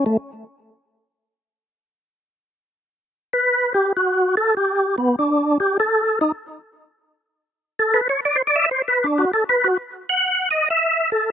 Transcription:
tonewheel organ
0.06 A3
3.33 B4
3.74 G4
3.97 F#4
4.37 A4
4.57 G4
4.98 B3
5.19 D4
5.60 G4
5.80 A4
6.21 D#4
7.79 A4
7.94 B4
8.09 C#5
8.25 D5
8.36 C5
8.47 D5
8.56 E5
8.71 C5
8.88 B4
9.04 D4
9.18 F#4
9.34 A4
9.49 B4
9.64 F#4
10.09 F#5
10.51 D#5
10.70 E5
11.12 A4

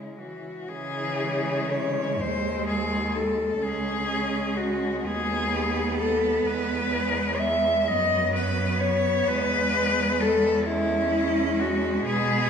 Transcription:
cello
Already playing: C#3 G#3 E4
0.18 E3 F#4
0.68 C#3 E3 G#3 G#4
1.71 C#5
2.20 D#2 G#3 C5
2.67 G#4
3.15 A4
3.60 C#2 G#3 C#4 G#4
4.57 F#4
5.03 D#2 B3 G#4
5.99 A4
6.47 E2 G#3 B4
7.39 E5
7.88 F#2 F#3 B3 D#5
8.34 B4
8.81 C#5
9.27 E2 G#3 B4
10.21 A4
10.65 G#3 C#4 E4
11.59 F#4
12.05 B2 B3 G#4

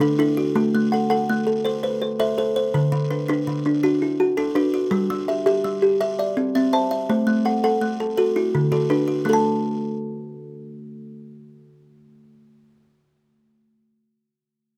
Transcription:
kalimba
Already playing: D3 A4
0.00 D3 D4 A4
0.19 D4 E4 A4
0.37 F#4
0.55 A3 F#4
0.75 A3
0.92 A4 F#5
1.10 A4 F#5
1.29 A3
1.47 A4
1.65 A4 C5
1.83 B4 C5
2.02 C5
2.20 A4 C5 E5
2.38 A4 C5
2.56 C5
2.74 D3 A4
2.92 D3
3.10 D4 B4
3.28 D4 B4
3.47 D3
3.66 D4
3.83 D4 F#4
4.02 E4
4.20 F#4
4.37 D4 F#4 A4
4.55 D4 F#4 B4
4.74 F#4
4.91 G3 D4
5.10 G3
5.28 G4 E5
5.46 G4 E5
5.64 G3
5.82 G4
6.01 G4 E5
6.19 D5 E5
6.37 C4
6.55 C4 E5
6.73 C5 E5 A5
6.91 E5
7.09 A3 C5
7.27 A3
7.45 A4 F#5
7.64 A4 F#5
7.81 A3
8.00 A4
8.18 F#4 A4
8.36 E4 F#4
8.55 D3
8.72 D3 F#4 A4
8.90 D4 F#4 B4
9.08 F#4
9.25 A3 D4
9.29 A4
9.33 A5

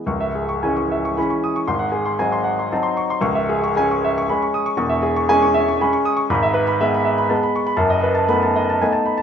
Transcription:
grand piano
0.06 C#1 C#2 C#6
0.21 E5
0.35 G#4
0.49 C#6
0.63 E3 G#3 C#4 G#5
0.77 C#6
0.91 E5
1.05 C#6
1.17 E3 G#3 C#4 B5
1.30 C#6
1.44 D#6
1.56 C#6
1.68 G#1 G#2 C6
1.79 F#5
1.92 G#4
2.05 C6
2.19 F#3 C4 D#4 G#5
2.32 C6
2.44 F#5
2.59 C6
2.72 F#3 C4 D#4 A5
2.83 C6
2.97 C#6
3.10 C6
3.21 C#1 C#2 C#6
3.35 E5
3.49 G#4
3.64 C#6
3.77 G#3 C#4 G#5
3.91 C#6
4.04 E5
4.18 C#6
4.29 G#3 C#4 B5
4.42 C#6
4.54 D#6
4.66 C#6
4.77 E1 E2 C#6
4.89 E5
5.03 G#4
5.16 C#6
5.29 G#3 C#4 G#5
5.42 C#6
5.54 E5
5.68 C#6
5.81 G#3 C#4 B5
5.93 C#6
6.05 D#6
6.17 C#6
6.30 G#1 G#2 B5
6.43 E5
6.54 B4
6.67 B5
6.81 G#3 B3 E5
6.94 B5
7.05 E5
7.18 B5
7.29 G#3 B3 A5
7.43 B5
7.56 C#6
7.67 B5
7.77 F#1 F#2 A5
7.90 D#5
8.03 B4
8.15 A5
8.28 A3 B3 D#4 B5
8.42 A5
8.56 D#5
8.70 A5
8.82 A3 B3 D#4 G#5
8.92 A5
9.06 B5
9.18 A5

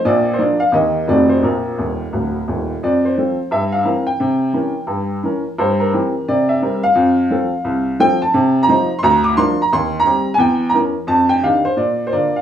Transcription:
upright piano
0.05 A#1 A#2 D5
0.34 C5
0.39 F3 A#3 D4 D5
0.60 F5
0.72 D#2 D#3 A#3 G4 D#5
1.07 F1 F2 D#3 A3 F#4 D5
1.29 C5
1.43 A#1 A#2 A#4
1.78 D#1 D#2
2.13 D1 D2
2.48 D#1 D#2
2.83 F2 D5
3.05 C5
3.18 F3 C4 A4
3.51 G2 E5
3.72 F5
3.85 E3 C4 A#4
4.07 G5
4.20 C3
4.53 E3 C#4 A#4
4.87 G2
5.23 E3 C#4 A#4
5.58 G2 C5
5.80 A#4
5.93 E3 C4 G4
6.28 C3 D5
6.49 E5
6.62 G3 C4 A#4
6.83 F5
6.95 F2
7.30 F3 C4 A4
7.64 C2
8.00 F3 C4 A4 G5
8.22 A5
8.34 C3
8.63 A#5
8.69 F3 D#4 C5
8.99 C6
9.03 D2 A#5
9.24 D6
9.37 F3 D4 A#4 C6
9.62 A#5
9.73 D#2 C6
10.00 A#5
10.06 G3 C4 G4
10.34 G#5
10.38 E2 G5
10.69 A#5
10.74 E3 C#4 A#4
11.07 F2 A5
11.29 G5
11.43 D#3 D4 G4 F5
11.65 C5
11.77 A#2 D5
12.07 C5
12.13 D3 A#3 F4 D5
12.36 F5

